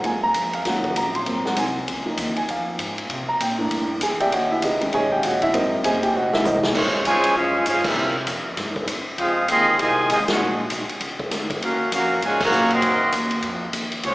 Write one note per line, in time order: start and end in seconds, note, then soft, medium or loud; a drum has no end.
0.04 0.33 F#2 medium
0.04 0.21 G#3 soft
0.04 0.21 A#3 soft
0.04 0.21 F4 medium
0.04 0.23 G#5 medium
0.04 kick soft
0.04 ride medium
0.23 0.52 A#5 loud
0.34 0.64 F2 medium
0.34 kick soft
0.34 hi-hat pedal medium
0.34 ride medium
0.53 0.61 F5 medium
0.53 ride medium
0.63 0.95 D#2 medium
0.63 1.24 F3 medium
0.63 1.23 F#3 medium
0.63 1.23 C#4 soft
0.63 0.65 F5 medium
0.63 kick soft
0.63 snare soft
0.63 ride medium
0.67 0.95 F#5 medium
0.84 kick medium
0.95 1.25 A#1 medium
0.95 1.15 A#5 medium
0.95 kick soft
0.95 hi-hat pedal medium
0.95 ride medium
1.15 1.43 C6 medium
1.15 ride soft
1.26 1.56 G#1 medium
1.26 1.84 F#3 medium
1.26 1.84 A#3 soft
1.26 1.85 C4 medium
1.26 kick soft
1.26 ride medium
1.45 1.57 F#5 medium
1.45 snare medium
1.56 1.87 C2 medium
1.56 1.86 G#5 medium
1.56 kick soft
1.56 hi-hat pedal medium
1.56 ride medium
1.88 2.17 C#2 medium
1.88 kick soft
1.88 ride medium
2.06 3.05 F3 soft
2.06 3.05 A#3 soft
2.06 3.06 D#4 medium
2.17 2.35 D#2 loud
2.17 kick soft
2.17 hi-hat pedal medium
2.17 ride medium
2.36 2.48 G#5 medium
2.36 muted upright bass stroke soft
2.36 ride medium
2.48 2.78 F2 medium
2.48 2.68 F5 medium
2.48 kick soft
2.48 ride medium
2.79 3.09 G#2 medium
2.79 kick soft
2.79 hi-hat pedal medium
2.79 ride medium
2.98 ride medium
3.10 3.27 C3 loud
3.10 kick soft
3.10 ride medium
3.28 3.40 A#5 medium
3.28 muted upright bass stroke soft
3.40 3.70 A#2 medium
3.40 3.52 G5 medium
3.40 kick soft
3.40 hi-hat pedal medium
3.40 ride medium
3.58 3.99 E3 medium
3.58 3.99 A3 medium
3.58 3.99 A#3 soft
3.58 3.99 D4 medium
3.70 4.00 G2 medium
3.70 kick soft
3.70 ride medium
4.01 4.31 E2 medium
4.01 4.20 G#4 medium
4.01 4.20 G#5 medium
4.01 kick soft
4.01 hi-hat pedal medium
4.01 ride medium
4.20 4.32 G4 medium
4.20 4.32 D5 medium
4.20 4.32 E5 medium
4.20 4.31 G5 loud
4.20 ride medium
4.32 4.61 D#2 loud
4.32 4.51 F#4 medium
4.32 4.51 C#5 medium
4.32 4.51 D#5 medium
4.32 4.51 F#5 medium
4.32 kick soft
4.32 ride medium
4.51 4.62 E4 medium
4.51 4.62 E5 medium
4.62 4.91 C#2 loud
4.62 4.81 D#4 medium
4.62 4.81 G#4 medium
4.62 4.82 B4 medium
4.62 4.81 D#5 medium
4.62 kick soft
4.62 hi-hat pedal medium
4.62 ride medium
4.81 5.50 D#3 medium
4.81 5.50 G#3 soft
4.81 5.50 C#4 medium
4.81 ride medium
4.92 5.22 B1 loud
4.92 5.12 G#4 medium
4.92 5.12 C#5 medium
4.92 5.12 D#5 medium
4.92 5.11 G#5 medium
4.92 kick soft
4.92 ride medium
5.12 5.23 G4 medium
5.12 5.23 G5 medium
5.20 5.52 A#1 medium
5.20 5.22 F5 medium
5.20 kick soft
5.20 hi-hat pedal medium
5.20 ride medium
5.24 5.42 F#4 medium
5.24 5.42 C#5 medium
5.24 5.42 D#5 medium
5.24 5.42 F#5 medium
5.42 5.54 E4 medium
5.42 5.53 E5 medium
5.42 ride medium
5.52 5.83 G#1 loud
5.52 6.00 F#3 medium
5.52 6.00 A#3 soft
5.52 6.00 C4 medium
5.52 5.72 D#4 medium
5.52 5.72 A#4 medium
5.52 5.72 C5 medium
5.52 5.72 D#5 medium
5.52 kick soft
5.52 ride medium
5.84 6.12 F#1 loud
5.84 6.03 G#4 medium
5.84 6.03 C5 medium
5.84 6.03 D#5 medium
5.84 6.02 G#5 medium
5.84 kick soft
5.84 hi-hat pedal medium
5.84 ride medium
6.03 6.14 G4 medium
6.03 6.14 G5 medium
6.03 ride medium
6.13 6.43 F1 medium
6.13 6.33 F#4 medium
6.13 6.33 C5 medium
6.13 6.33 D#5 medium
6.13 6.33 F#5 medium
6.33 6.45 E4 medium
6.33 6.44 E5 medium
6.33 snare medium
6.43 6.73 C2 medium
6.43 6.57 D#4 medium
6.43 6.57 A#4 medium
6.43 6.57 C5 medium
6.43 6.57 D#5 medium
6.43 floor tom loud
6.43 hi-hat pedal medium
6.63 snare loud
6.75 6.92 A#1 medium
6.75 7.03 F3 medium
6.75 7.03 G#3 medium
6.75 7.04 G#3 medium
6.75 7.03 C#4 medium
6.75 7.04 F4 medium
6.75 7.04 C5 medium
6.75 7.04 C#5 medium
6.75 kick medium
6.75 crash medium
6.93 muted upright bass stroke soft
7.05 7.22 F2 loud
7.05 7.34 C#3 loud
7.05 7.34 F3 loud
7.05 7.34 G#3 medium
7.05 7.34 F4 loud
7.05 7.34 C5 loud
7.05 7.34 C#5 loud
7.05 7.34 G#5 loud
7.05 kick soft
7.05 hi-hat pedal medium
7.05 ride medium
7.23 muted upright bass stroke soft
7.23 ride medium
7.35 7.65 F#2 medium
7.35 7.64 G#3 medium
7.35 7.65 C#4 medium
7.35 7.64 F4 medium
7.35 7.65 G#4 medium
7.35 7.65 C5 medium
7.35 7.65 F5 loud
7.35 kick soft
7.66 7.95 G#2 loud
7.66 7.85 G#3 medium
7.66 7.84 C#4 medium
7.66 7.85 C#4 medium
7.66 7.85 F4 medium
7.66 7.84 G#4 medium
7.66 7.85 C5 medium
7.66 7.84 F5 medium
7.66 kick soft
7.66 hi-hat pedal medium
7.66 ride medium
7.84 8.16 G3 medium
7.84 8.17 A#3 medium
7.84 8.17 C#4 medium
7.84 8.17 E4 medium
7.84 8.17 G4 medium
7.84 8.16 A#4 medium
7.84 8.17 E5 medium
7.84 kick loud
7.84 crash medium
7.96 8.26 C3 medium
8.27 8.56 F2 loud
8.27 kick soft
8.27 hi-hat pedal medium
8.27 ride medium
8.57 8.86 G2 medium
8.57 kick soft
8.57 snare soft
8.57 ride medium
8.76 kick medium
8.87 9.05 E2 medium
8.87 kick soft
8.87 hi-hat pedal medium
8.87 ride medium
9.06 muted upright bass stroke soft
9.18 9.48 F2 loud
9.18 9.46 G#3 medium
9.18 9.46 C4 medium
9.18 9.47 D#4 medium
9.18 9.46 F4 medium
9.18 9.47 G#4 medium
9.18 9.47 C5 medium
9.18 9.47 F5 medium
9.18 kick soft
9.18 ride medium
9.48 9.78 D#2 loud
9.48 9.77 D#3 loud
9.48 9.77 G#3 loud
9.48 9.77 C4 loud
9.48 9.78 G#4 loud
9.48 9.78 D#5 loud
9.48 9.78 F5 loud
9.48 9.78 C6 loud
9.48 kick soft
9.48 hi-hat pedal medium
9.48 ride medium
9.79 10.08 C2 medium
9.79 10.09 C3 medium
9.79 10.09 D#3 medium
9.79 10.09 G#3 medium
9.79 10.11 F4 medium
9.79 10.11 C5 medium
9.79 10.10 D#5 medium
9.79 10.11 G#5 loud
9.79 kick soft
9.79 ride medium
10.09 10.27 G#1 medium
10.09 10.18 C3 medium
10.09 10.18 D#3 medium
10.09 10.18 G#3 medium
10.09 10.20 F4 medium
10.09 10.20 C5 medium
10.09 10.20 D#5 medium
10.09 10.19 G#5 medium
10.09 kick soft
10.09 hi-hat pedal medium
10.09 ride medium
10.28 10.57 G#3 medium
10.28 10.56 D4 medium
10.28 10.57 D4 medium
10.28 10.57 F#4 medium
10.28 10.58 G#4 medium
10.28 10.57 C#5 medium
10.28 10.58 F#5 medium
10.28 muted upright bass stroke soft
10.28 snare medium
10.28 ride medium
10.39 10.69 A#1 medium
10.70 10.87 B1 loud
10.70 kick soft
10.70 hi-hat pedal medium
10.70 ride medium
10.89 muted upright bass stroke soft
10.89 ride medium
11.00 11.18 C#2 medium
11.00 kick soft
11.00 ride medium
11.19 muted upright bass stroke soft
11.19 kick medium
11.31 11.60 D2 medium
11.31 kick soft
11.31 snare soft
11.31 hi-hat pedal medium
11.31 ride medium
11.50 kick medium
11.50 ride medium
11.62 11.91 D#2 medium
11.62 11.90 A#3 medium
11.62 11.90 C#4 medium
11.62 11.91 C#4 medium
11.62 11.90 F#4 medium
11.62 11.90 A#4 medium
11.62 11.91 F5 medium
11.62 kick soft
11.62 ride medium
11.92 12.21 F2 loud
11.92 12.20 A#3 medium
11.92 12.21 C#4 medium
11.92 12.21 F#4 medium
11.92 12.21 A#4 medium
11.92 12.21 F5 loud
11.92 kick soft
11.92 hi-hat pedal medium
11.92 ride medium
12.22 12.51 G#2 medium
12.22 12.42 A#2 medium
12.22 12.42 C#3 medium
12.22 12.42 G#3 medium
12.22 12.42 F#4 medium
12.22 12.42 C#5 medium
12.22 12.42 G#5 loud
12.22 kick soft
12.22 ride medium
12.26 12.43 F5 medium
12.41 12.70 C#3 medium
12.41 12.70 F#3 medium
12.41 12.70 A#3 medium
12.41 12.71 F#4 medium
12.41 12.71 C#5 medium
12.41 12.71 F5 medium
12.41 12.71 A#5 loud
12.41 kick medium
12.41 crash medium
12.52 12.81 A#2 medium
12.52 hi-hat pedal medium
12.70 13.14 D#3 medium
12.70 13.14 F#3 medium
12.70 13.14 C4 medium
12.70 13.14 A#4 medium
12.70 13.14 D#5 loud
12.70 13.14 F#5 medium
12.70 ride medium
12.75 13.15 C6 loud
12.82 13.00 F#2 loud
12.82 kick soft
12.82 ride medium
13.01 muted upright bass stroke soft
13.12 13.42 D#2 loud
13.12 kick soft
13.12 hi-hat pedal medium
13.12 ride medium
13.31 ride medium
13.42 13.72 F2 medium
13.42 kick soft
13.42 ride medium
13.73 14.03 D#2 medium
13.73 kick soft
13.73 hi-hat pedal medium
13.73 ride medium
13.92 ride medium
14.03 14.15 C#2 loud
14.03 14.15 F3 medium
14.03 14.15 G#3 medium
14.03 14.15 C#4 medium
14.03 14.15 F4 medium
14.03 14.15 C5 medium
14.03 14.15 C#5 loud
14.03 kick soft
14.03 ride medium